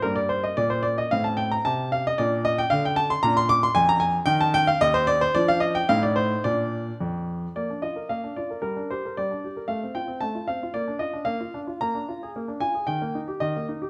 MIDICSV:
0, 0, Header, 1, 2, 480
1, 0, Start_track
1, 0, Key_signature, -2, "major"
1, 0, Tempo, 529101
1, 41, Time_signature, 2, 2, 24, 8
1, 4360, Tempo, 549451
1, 7720, Tempo, 524017
1, 10120, Tempo, 535714
1, 12474, End_track
2, 0, Start_track
2, 0, Title_t, "Grand piano"
2, 0, Program_c, 0, 0
2, 21, Note_on_c, 0, 70, 89
2, 30, Note_on_c, 0, 58, 44
2, 33, Note_on_c, 0, 43, 59
2, 141, Note_on_c, 0, 74, 82
2, 153, Note_off_c, 0, 70, 0
2, 264, Note_on_c, 0, 72, 84
2, 273, Note_off_c, 0, 74, 0
2, 395, Note_on_c, 0, 75, 77
2, 396, Note_off_c, 0, 72, 0
2, 425, Note_off_c, 0, 43, 0
2, 517, Note_on_c, 0, 74, 92
2, 521, Note_on_c, 0, 46, 61
2, 522, Note_off_c, 0, 75, 0
2, 635, Note_on_c, 0, 72, 83
2, 644, Note_off_c, 0, 74, 0
2, 750, Note_on_c, 0, 74, 86
2, 764, Note_off_c, 0, 72, 0
2, 882, Note_off_c, 0, 74, 0
2, 888, Note_on_c, 0, 75, 85
2, 913, Note_off_c, 0, 46, 0
2, 973, Note_off_c, 0, 58, 0
2, 1009, Note_on_c, 0, 77, 96
2, 1012, Note_off_c, 0, 75, 0
2, 1014, Note_on_c, 0, 60, 42
2, 1020, Note_on_c, 0, 45, 59
2, 1126, Note_on_c, 0, 81, 82
2, 1133, Note_off_c, 0, 77, 0
2, 1241, Note_on_c, 0, 79, 88
2, 1252, Note_off_c, 0, 81, 0
2, 1369, Note_off_c, 0, 79, 0
2, 1374, Note_on_c, 0, 82, 86
2, 1404, Note_off_c, 0, 45, 0
2, 1496, Note_off_c, 0, 82, 0
2, 1496, Note_on_c, 0, 81, 103
2, 1504, Note_on_c, 0, 48, 66
2, 1713, Note_off_c, 0, 81, 0
2, 1742, Note_on_c, 0, 77, 94
2, 1860, Note_off_c, 0, 77, 0
2, 1877, Note_on_c, 0, 75, 94
2, 1885, Note_off_c, 0, 48, 0
2, 1941, Note_off_c, 0, 60, 0
2, 1979, Note_on_c, 0, 74, 96
2, 1986, Note_on_c, 0, 62, 45
2, 1987, Note_off_c, 0, 75, 0
2, 1989, Note_on_c, 0, 46, 71
2, 2193, Note_off_c, 0, 74, 0
2, 2220, Note_on_c, 0, 75, 103
2, 2337, Note_off_c, 0, 75, 0
2, 2345, Note_on_c, 0, 79, 100
2, 2365, Note_off_c, 0, 46, 0
2, 2450, Note_on_c, 0, 77, 107
2, 2458, Note_off_c, 0, 79, 0
2, 2465, Note_on_c, 0, 50, 71
2, 2571, Note_off_c, 0, 77, 0
2, 2588, Note_on_c, 0, 79, 89
2, 2688, Note_on_c, 0, 81, 108
2, 2699, Note_off_c, 0, 79, 0
2, 2809, Note_off_c, 0, 81, 0
2, 2814, Note_on_c, 0, 84, 105
2, 2841, Note_off_c, 0, 50, 0
2, 2897, Note_off_c, 0, 62, 0
2, 2928, Note_on_c, 0, 82, 115
2, 2931, Note_off_c, 0, 84, 0
2, 2937, Note_on_c, 0, 46, 76
2, 2939, Note_on_c, 0, 62, 48
2, 3047, Note_off_c, 0, 82, 0
2, 3055, Note_on_c, 0, 84, 111
2, 3168, Note_on_c, 0, 86, 125
2, 3169, Note_off_c, 0, 84, 0
2, 3285, Note_off_c, 0, 86, 0
2, 3295, Note_on_c, 0, 84, 108
2, 3312, Note_off_c, 0, 46, 0
2, 3399, Note_on_c, 0, 80, 122
2, 3407, Note_off_c, 0, 84, 0
2, 3408, Note_on_c, 0, 41, 75
2, 3519, Note_off_c, 0, 80, 0
2, 3527, Note_on_c, 0, 82, 111
2, 3628, Note_on_c, 0, 80, 103
2, 3643, Note_off_c, 0, 82, 0
2, 3775, Note_off_c, 0, 80, 0
2, 3787, Note_off_c, 0, 41, 0
2, 3847, Note_off_c, 0, 62, 0
2, 3861, Note_on_c, 0, 79, 122
2, 3869, Note_on_c, 0, 51, 77
2, 3872, Note_on_c, 0, 63, 54
2, 3990, Note_off_c, 0, 79, 0
2, 3997, Note_on_c, 0, 81, 110
2, 4118, Note_off_c, 0, 81, 0
2, 4119, Note_on_c, 0, 79, 126
2, 4240, Note_off_c, 0, 79, 0
2, 4240, Note_on_c, 0, 77, 109
2, 4259, Note_off_c, 0, 51, 0
2, 4361, Note_off_c, 0, 77, 0
2, 4364, Note_on_c, 0, 75, 124
2, 4370, Note_on_c, 0, 39, 81
2, 4477, Note_on_c, 0, 72, 110
2, 4480, Note_off_c, 0, 75, 0
2, 4592, Note_on_c, 0, 74, 116
2, 4595, Note_off_c, 0, 72, 0
2, 4711, Note_off_c, 0, 74, 0
2, 4716, Note_on_c, 0, 72, 104
2, 4742, Note_off_c, 0, 39, 0
2, 4793, Note_off_c, 0, 63, 0
2, 4832, Note_off_c, 0, 72, 0
2, 4832, Note_on_c, 0, 74, 112
2, 4840, Note_on_c, 0, 62, 49
2, 4843, Note_on_c, 0, 53, 73
2, 4949, Note_off_c, 0, 74, 0
2, 4952, Note_on_c, 0, 77, 111
2, 5057, Note_on_c, 0, 75, 104
2, 5069, Note_off_c, 0, 77, 0
2, 5181, Note_off_c, 0, 75, 0
2, 5184, Note_on_c, 0, 79, 101
2, 5218, Note_off_c, 0, 53, 0
2, 5278, Note_off_c, 0, 62, 0
2, 5305, Note_off_c, 0, 79, 0
2, 5306, Note_on_c, 0, 77, 114
2, 5308, Note_on_c, 0, 45, 80
2, 5309, Note_on_c, 0, 63, 54
2, 5427, Note_off_c, 0, 77, 0
2, 5428, Note_on_c, 0, 74, 92
2, 5541, Note_on_c, 0, 72, 97
2, 5549, Note_off_c, 0, 74, 0
2, 5696, Note_off_c, 0, 45, 0
2, 5760, Note_off_c, 0, 63, 0
2, 5789, Note_off_c, 0, 72, 0
2, 5789, Note_on_c, 0, 74, 96
2, 5792, Note_on_c, 0, 46, 66
2, 5798, Note_on_c, 0, 62, 46
2, 6186, Note_off_c, 0, 46, 0
2, 6234, Note_off_c, 0, 74, 0
2, 6281, Note_on_c, 0, 41, 63
2, 6675, Note_off_c, 0, 41, 0
2, 6743, Note_off_c, 0, 62, 0
2, 6765, Note_on_c, 0, 74, 65
2, 6769, Note_on_c, 0, 58, 46
2, 6887, Note_off_c, 0, 58, 0
2, 6890, Note_on_c, 0, 62, 34
2, 6982, Note_off_c, 0, 74, 0
2, 6994, Note_on_c, 0, 75, 68
2, 6997, Note_on_c, 0, 65, 36
2, 7016, Note_off_c, 0, 62, 0
2, 7115, Note_on_c, 0, 70, 36
2, 7128, Note_off_c, 0, 65, 0
2, 7232, Note_on_c, 0, 77, 69
2, 7239, Note_off_c, 0, 75, 0
2, 7239, Note_on_c, 0, 58, 44
2, 7247, Note_off_c, 0, 70, 0
2, 7357, Note_on_c, 0, 62, 34
2, 7359, Note_off_c, 0, 58, 0
2, 7468, Note_on_c, 0, 74, 62
2, 7477, Note_off_c, 0, 77, 0
2, 7477, Note_on_c, 0, 65, 40
2, 7486, Note_off_c, 0, 62, 0
2, 7591, Note_on_c, 0, 70, 36
2, 7605, Note_off_c, 0, 65, 0
2, 7677, Note_off_c, 0, 70, 0
2, 7688, Note_off_c, 0, 74, 0
2, 7690, Note_on_c, 0, 70, 64
2, 7695, Note_on_c, 0, 55, 47
2, 7824, Note_on_c, 0, 62, 36
2, 7826, Note_off_c, 0, 55, 0
2, 7949, Note_off_c, 0, 70, 0
2, 7952, Note_on_c, 0, 72, 67
2, 7960, Note_on_c, 0, 67, 39
2, 7961, Note_off_c, 0, 62, 0
2, 8089, Note_on_c, 0, 70, 37
2, 8090, Note_off_c, 0, 67, 0
2, 8198, Note_on_c, 0, 74, 73
2, 8201, Note_off_c, 0, 72, 0
2, 8205, Note_on_c, 0, 55, 45
2, 8215, Note_off_c, 0, 70, 0
2, 8323, Note_off_c, 0, 55, 0
2, 8325, Note_on_c, 0, 62, 33
2, 8445, Note_on_c, 0, 67, 37
2, 8452, Note_off_c, 0, 62, 0
2, 8557, Note_on_c, 0, 70, 37
2, 8572, Note_off_c, 0, 67, 0
2, 8646, Note_off_c, 0, 74, 0
2, 8659, Note_on_c, 0, 77, 71
2, 8663, Note_on_c, 0, 57, 51
2, 8682, Note_off_c, 0, 70, 0
2, 8791, Note_off_c, 0, 57, 0
2, 8803, Note_on_c, 0, 60, 35
2, 8907, Note_on_c, 0, 79, 68
2, 8909, Note_on_c, 0, 65, 39
2, 8913, Note_off_c, 0, 77, 0
2, 8931, Note_off_c, 0, 60, 0
2, 9025, Note_on_c, 0, 60, 39
2, 9044, Note_off_c, 0, 65, 0
2, 9143, Note_on_c, 0, 81, 79
2, 9156, Note_on_c, 0, 57, 46
2, 9157, Note_off_c, 0, 79, 0
2, 9162, Note_off_c, 0, 60, 0
2, 9274, Note_on_c, 0, 65, 37
2, 9278, Note_off_c, 0, 57, 0
2, 9390, Note_on_c, 0, 77, 76
2, 9394, Note_off_c, 0, 81, 0
2, 9400, Note_on_c, 0, 60, 40
2, 9406, Note_off_c, 0, 65, 0
2, 9528, Note_off_c, 0, 60, 0
2, 9532, Note_on_c, 0, 65, 42
2, 9631, Note_on_c, 0, 74, 77
2, 9636, Note_off_c, 0, 77, 0
2, 9641, Note_on_c, 0, 58, 52
2, 9648, Note_off_c, 0, 65, 0
2, 9757, Note_on_c, 0, 62, 40
2, 9758, Note_off_c, 0, 58, 0
2, 9864, Note_on_c, 0, 75, 82
2, 9870, Note_on_c, 0, 65, 38
2, 9875, Note_off_c, 0, 74, 0
2, 9885, Note_off_c, 0, 62, 0
2, 9993, Note_on_c, 0, 62, 39
2, 10002, Note_off_c, 0, 65, 0
2, 10088, Note_off_c, 0, 75, 0
2, 10098, Note_on_c, 0, 77, 88
2, 10104, Note_on_c, 0, 58, 49
2, 10124, Note_off_c, 0, 62, 0
2, 10228, Note_off_c, 0, 58, 0
2, 10238, Note_on_c, 0, 65, 43
2, 10362, Note_on_c, 0, 62, 45
2, 10368, Note_off_c, 0, 65, 0
2, 10398, Note_off_c, 0, 77, 0
2, 10480, Note_on_c, 0, 65, 44
2, 10492, Note_off_c, 0, 62, 0
2, 10600, Note_on_c, 0, 82, 85
2, 10606, Note_off_c, 0, 65, 0
2, 10607, Note_on_c, 0, 58, 55
2, 10723, Note_on_c, 0, 62, 41
2, 10726, Note_off_c, 0, 58, 0
2, 10850, Note_on_c, 0, 65, 46
2, 10853, Note_off_c, 0, 62, 0
2, 10975, Note_off_c, 0, 65, 0
2, 10977, Note_on_c, 0, 68, 44
2, 11033, Note_off_c, 0, 82, 0
2, 11094, Note_on_c, 0, 58, 52
2, 11098, Note_off_c, 0, 68, 0
2, 11204, Note_on_c, 0, 62, 42
2, 11207, Note_off_c, 0, 58, 0
2, 11314, Note_on_c, 0, 80, 84
2, 11319, Note_on_c, 0, 65, 41
2, 11331, Note_off_c, 0, 62, 0
2, 11442, Note_on_c, 0, 68, 46
2, 11448, Note_off_c, 0, 65, 0
2, 11549, Note_on_c, 0, 79, 82
2, 11557, Note_on_c, 0, 51, 53
2, 11558, Note_off_c, 0, 80, 0
2, 11563, Note_off_c, 0, 68, 0
2, 11676, Note_off_c, 0, 51, 0
2, 11683, Note_on_c, 0, 58, 44
2, 11801, Note_on_c, 0, 63, 46
2, 11808, Note_off_c, 0, 58, 0
2, 11839, Note_off_c, 0, 79, 0
2, 11918, Note_on_c, 0, 67, 45
2, 11926, Note_off_c, 0, 63, 0
2, 12029, Note_on_c, 0, 75, 83
2, 12037, Note_on_c, 0, 51, 55
2, 12044, Note_off_c, 0, 67, 0
2, 12154, Note_off_c, 0, 51, 0
2, 12173, Note_on_c, 0, 58, 44
2, 12250, Note_off_c, 0, 75, 0
2, 12284, Note_on_c, 0, 63, 42
2, 12292, Note_off_c, 0, 58, 0
2, 12401, Note_on_c, 0, 67, 50
2, 12408, Note_off_c, 0, 63, 0
2, 12474, Note_off_c, 0, 67, 0
2, 12474, End_track
0, 0, End_of_file